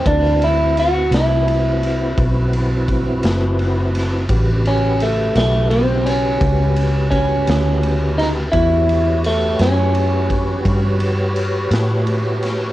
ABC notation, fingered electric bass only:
X:1
M:12/8
L:1/8
Q:3/8=57
K:Amix
V:1 name="Fingered electric bass" clef=bass
D,,3 =C,,3 B,,,3 F,,,3 | A,,,3 B,,,3 C,,3 D,,3 | E,,3 F,,3 G,,3 A,,3 |]